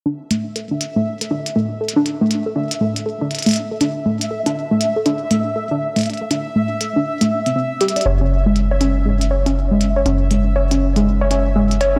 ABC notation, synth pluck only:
X:1
M:4/4
L:1/16
Q:"Swing 16ths" 1/4=120
K:Dlyd
V:1 name="Synth pluck"
D z A, z A D z A, z A D z A, z A D | z A, z A D z A, z A D z A, z A D z | A, z A D z A, z A D z A, z A D z A, | z A D z A, z A D z A, z =C C z =G d |
c C z G, z c C z G, z c C z G, z c | C z G, z c C z G, z c C z G, z c z |]